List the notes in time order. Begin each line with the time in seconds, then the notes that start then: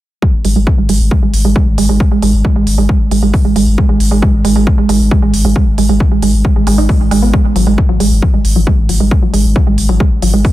0.22 G#3, kick
0.34 G#1
0.45 G#1 G#3, open hi-hat
0.56 G#1 G#3
0.67 kick
0.78 G#1 G#3
0.89 G#1 G#3, open hi-hat
1.00 G#1
1.11 G#3, kick
1.22 G#1 G#3
1.33 G#1, open hi-hat
1.45 G#1 G#3
1.56 G#3, kick
1.67 G#1
1.78 G#1 G#3, open hi-hat
1.89 G#1 G#3
2.00 kick
2.11 G#1 G#3
2.22 G#1 G#3, open hi-hat
2.33 G#1
2.45 G#3, kick
2.56 G#1 G#3
2.67 G#1, open hi-hat
2.78 G#1 G#3
2.89 G#3, kick
3.00 G#1
3.11 G#1 G#3, open hi-hat
3.22 G#1 G#3
3.34 kick, open hi-hat
3.45 G#1 G#3
3.56 G#1 G#3, open hi-hat
3.67 G#1
3.78 G#3, kick
3.89 G#1 G#3
4.00 G#1, open hi-hat
4.11 G#1 G#3
4.22 G#3, kick
4.34 G#1
4.45 G#1 G#3, open hi-hat
4.56 G#1 G#3
4.67 kick
4.78 G#1 G#3
4.89 G#1 G#3, open hi-hat
5.00 G#1
5.11 G#3, kick
5.22 G#1 G#3
5.34 G#1, open hi-hat
5.45 G#1 G#3
5.56 G#3, kick
5.67 G#1
5.78 G#1 G#3, open hi-hat
5.89 G#1 G#3
6.00 kick
6.11 G#1 G#3
6.22 G#1 G#3, open hi-hat
6.33 G#1
6.45 G#3, kick
6.56 G#1 G#3
6.67 G#1 G#3, open hi-hat
6.78 G#1 D#4
6.89 G#3, kick, open hi-hat
7.00 G#1
7.11 G#1 G#3, open hi-hat
7.22 G#1 B3
7.34 G#3, kick
7.45 G#1
7.56 G#1 F#3, open hi-hat
7.67 G#1 G#3
7.78 kick
7.89 G#1 F#3
8.00 G#1 G#3, open hi-hat
8.11 G#1
8.22 F#3, kick
8.34 G#1 G#3
8.45 G#1, open hi-hat
8.56 G#1 F#3
8.67 G#3, kick
8.78 G#1
8.89 G#1 F#3, open hi-hat
9.00 G#1 G#3
9.11 kick
9.22 G#1 F#3
9.34 G#1 G#3, open hi-hat
9.45 G#1
9.56 F#3, kick
9.67 G#1 G#3
9.78 G#1, open hi-hat
9.89 G#1 F#3
10.00 G#3, kick
10.12 G#1
10.22 G#1 F#3, open hi-hat
10.34 G#1 G#3
10.45 kick, open hi-hat